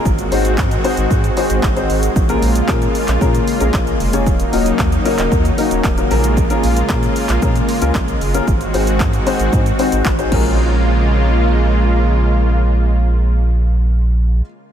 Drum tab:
CC |----------------|----------------|----------------|----------------|
HH |-xox-xox-xox-xox|-xox-xox-xox-xox|-xox-xox-xox-xox|-xox-xox-xox-xox|
SH |xxxxxxxxxxxxxxxx|xxxxxxxxxxxxxxxx|xxxxxxxxxxxxxxxx|xxxxxxxxxxxxxxxx|
CP |----x-------x---|----x--x----x---|----x--x----x---|----x--x----x---|
BD |o---o---o---o---|o---o---o---o---|o---o---o---o---|o---o---o---o---|

CC |--------------x-|----------------|----------------|
HH |-xox-xox-xox-x--|----------------|----------------|
SH |xxxxxxxxxxxxxx--|----------------|----------------|
CP |----x-------x---|----------------|----------------|
BD |o---o---o---o-o-|----------------|----------------|